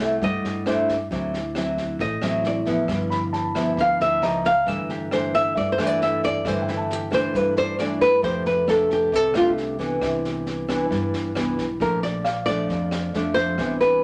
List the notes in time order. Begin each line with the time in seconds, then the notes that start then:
Already playing: C2 C3
0.00 A3 E4
0.22 G2 G3 D#5, kick, snare
0.44 G2, snare
0.66 A3 D4 E4 C5, cross-stick, snare
0.89 kick, snare
1.11 D2 D3 F#3 C4 E4, kick, snare
1.34 snare
1.55 F#3 C4 E4, cross-stick, snare
1.77 kick, snare
1.99 A1 A2 D#5, kick, snare
2.22 A1 F#3 C4 E4, cross-stick, snare
2.44 D5, snare
2.66 F3 B3 E4, kick, snare
2.88 G1 G2, kick, cross-stick, snare
3.10 B5, snare
3.33 A5, snare
3.55 F3 B3 E4, kick, cross-stick, snare
3.77 D2 D3 F5, kick, snare
4.00 D2 E5, snare
4.22 C#2 F3 A#3 D#4 D#5 A#5, cross-stick, snare
4.44 F5, kick, snare
4.66 G1 G2 E3 A3 D4 E5, kick, snare
4.89 G4, snare
5.11 E3 A3 D4 C5, cross-stick, snare
5.33 E5, kick, snare
5.55 G2 D5, kick, snare
5.72 C5
5.78 G2 E3 A3 D4, cross-stick, snare
5.87 D5
6.01 E5, snare
6.23 D5, kick, snare
6.44 G1 G2 E3 A3 D4 C5 E5, kick, cross-stick, snare
6.62 G5
6.68 E4, snare
6.77 A5
6.90 G4, snare
7.11 E3 A3 D4 C5, kick, cross-stick, snare
7.34 G2 B4, kick, snare
7.56 G2 C5 D5, snare
7.79 E3 A3 D4 D5, cross-stick, snare
8.01 B4, kick, snare
8.22 F1 F3 A3 D4 G4 C5, kick, snare
8.45 B4, snare
8.67 A3 D4 G4 A4, cross-stick, snare
8.90 G4, kick, snare
9.12 C2 C3 A4, kick, snare
9.34 C2 A3 D4 F4 G4, cross-stick, snare
9.57 snare
9.79 E3 B3 D4, kick, snare
10.01 C2 C3, kick, cross-stick, snare
10.24 snare
10.46 snare
10.68 E3 B3 D4, kick, cross-stick, snare
10.90 G2, kick, snare
11.13 G2, snare
11.35 C2 E3 B3 D4, cross-stick, snare
11.58 B1, kick, snare
11.80 A#1 A#2 F3 A3 D4 A#4, kick, snare
12.03 D5, snare
12.24 F5, cross-stick, snare
12.46 F3 A3 D4 D5, kick, snare
12.69 F2, kick, snare
12.91 cross-stick, snare
13.14 F2 F3 A3 D4, snare
13.34 C5 E5, kick, snare
13.58 C2 C3 E3 B3 D4, kick, cross-stick, snare
13.80 B4, snare